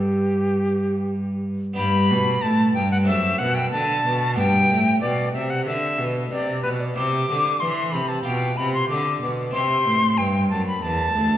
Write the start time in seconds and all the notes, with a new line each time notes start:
Already playing: G2 B3 D4 G4
1.73 G2 B3 D4 G4 B5
1.78 G2
2.10 B2
2.42 A2 A5
2.74 G2 G5
2.92 F#5
3.03 C4 D4 A4 E5
3.08 F#2
3.39 B2 F#5
3.55 G5
3.71 D3 A5
4.05 B2
4.33 G2 B3 D4 B4 G5
4.38 G2
4.70 A2
5.00 B2 D5
5.34 C3 E5
5.50 F#5
5.65 D3 E5
5.99 B2
6.31 C3 D5
6.63 B2 B4
6.80 D5
6.94 C3 E4 C5 D6
7.30 D3
7.60 E3 C6
7.92 C3 B5
8.08 A5
8.23 B2 F4 G4 G5
8.57 C3 B5
8.74 C6
8.90 D3 D6
9.22 B2
9.51 C3 C4 E4 G4 C6
9.55 C3
9.87 A2
10.18 G2 G5
10.50 F#2 A5
10.67 B5
10.82 E2 A5
11.14 D2